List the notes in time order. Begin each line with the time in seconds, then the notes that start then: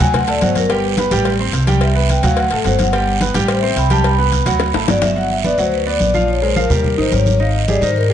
0.00 D2 F#3 F#4 F#5 G#5, cowbell, high conga, low conga, short guiro
0.14 F#5, cowbell, high conga, low conga, long guiro
0.27 A3 A4 D5 A5, cowbell, high conga
0.41 G1 F#3 F#4 C5 F#5, cowbell, high conga, short guiro
0.55 A#4, cowbell, high conga, short guiro
0.69 G3 G4 B4 G5, cowbell, high conga, long guiro
0.84 high conga
0.97 B3 B4 B5, cowbell, high conga, short guiro
1.11 A1 G3 G4 G5, cowbell, high conga, short guiro
1.25 cowbell, high conga, long guiro
1.39 C4 C5 C6, high conga
1.53 C2, cowbell, high conga, short guiro
1.67 G3 G4 G5, cowbell, high conga, short guiro
1.81 E5, cowbell, high conga, long guiro
1.95 B3 B4 B5, high conga
2.09 G5, cowbell, high conga, short guiro
2.23 D2 F#3 F#4 F5 F#5, cowbell, high conga, low conga, short guiro
2.37 F#5, cowbell, high conga, long guiro
2.50 A1 A3 A4 A5, cowbell, high conga
2.64 G1 F#3 F#4 C5 F#5, cowbell, high conga, short guiro
2.79 F#5, cowbell, high conga, short guiro
2.93 G3 G4 G5, cowbell, high conga, long guiro
3.07 high conga
3.20 B3 B4 B5, cowbell, high conga, short guiro
3.34 A1 G3 G4 G5, cowbell, high conga, short guiro
3.48 C5, cowbell, high conga, long guiro
3.60 C4 C5 E5 C6, high conga
3.69 G5
3.76 C2 B5, cowbell, high conga, short guiro
3.90 G3 G4 G5 A5, cowbell, high conga, short guiro
4.04 B5, cowbell, high conga, long guiro
4.18 B3 B4 B5, high conga
4.32 cowbell, high conga, short guiro
4.46 D2 F#3 F#4 F#5, cowbell, high conga, low conga, short guiro
4.60 cowbell, high bongo, high conga, long guiro
4.74 A1 A3 A4 A5, cowbell, low bongo, high conga
4.87 G1 F#3 F#4 D5 F#5, cowbell, low bongo, high conga, short guiro
5.02 E5, cowbell, low bongo, high conga, short guiro
5.16 F#3 F#4 F#5, high conga, long guiro
5.31 E5, high conga
5.44 B3 B4 D5, high conga, short guiro
5.58 D2 F#3 F#4 C5 F#5, high conga, short guiro
5.72 B4, high conga, long guiro
5.86 B3 B4 D5, high conga
6.00 A#1, high conga, short guiro
6.14 F3 F4 F5, high conga, short guiro
6.28 C#5, high conga, long guiro
6.42 G#3 G#4 A#4 C5, high conga
6.56 F3 F4 A#4 F5, high conga, short guiro
6.70 D#2 G3 G4 A#4, high conga, low conga, short guiro
6.84 high conga, low conga, long guiro
6.98 A1 D#3 D#4 C5 D#5, high conga
7.12 G#1 G3 G4 A#4 C#5, high conga, short guiro
7.26 high conga, short guiro
7.38 D#3 D#4 D#5 F5, high conga, long guiro
7.54 D#5, high conga
7.68 G3 G4 G#4 D5, high conga, short guiro
7.81 G#2 D#3 D#4 C5 D#5, high conga, short guiro
7.96 A#4, high conga, long guiro
8.10 G3 G4 G#4, high conga